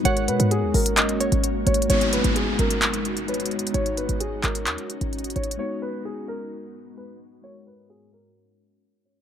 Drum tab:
HH |x-----x-----x-----x-----x-----------o-----x-----x-----x-----x-----x-----x-----------x---x---x---|x-----x-----x-----x-----x-----------x-----x-----x-----x-----x-----x-----x--x--x--x--x---x---x---|x-----x-----x-----x-----x-----------x-----x-----x-----x-----x-----x-----x--x--x--x--x---x---x---|------------------------------------------------------------------------------------------------|
CP |------------------------------------------------x-----------------------------------------------|------------------------------------------------x-----------------------------------------------|------------------------------------x-----------x-----------------------------------------------|------------------------------------------------------------------------------------------------|

HH |------------------------------------------------------------------------------------------------|
CP |------------------------------------------------------------------------------------------------|